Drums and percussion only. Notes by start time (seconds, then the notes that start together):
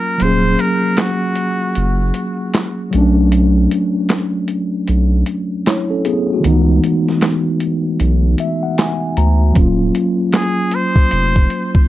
0.20 closed hi-hat
0.59 closed hi-hat
0.97 snare, clap, closed hi-hat
1.35 closed hi-hat
1.75 closed hi-hat
2.14 closed hi-hat
2.54 snare, clap, closed hi-hat
2.93 closed hi-hat
3.32 closed hi-hat
3.71 closed hi-hat
4.09 snare, clap, closed hi-hat
4.48 closed hi-hat
4.88 closed hi-hat
5.26 closed hi-hat
5.66 snare, clap, closed hi-hat
6.05 closed hi-hat
6.44 closed hi-hat
6.84 closed hi-hat
7.08 snare
7.21 snare, clap, closed hi-hat
7.60 closed hi-hat
8.00 closed hi-hat
8.38 closed hi-hat
8.78 snare, clap, closed hi-hat
9.17 closed hi-hat
9.55 kick, closed hi-hat
9.95 closed hi-hat
10.33 snare, clap, closed hi-hat
10.71 closed hi-hat
10.96 kick
11.11 closed hi-hat
11.36 kick
11.50 closed hi-hat
11.75 kick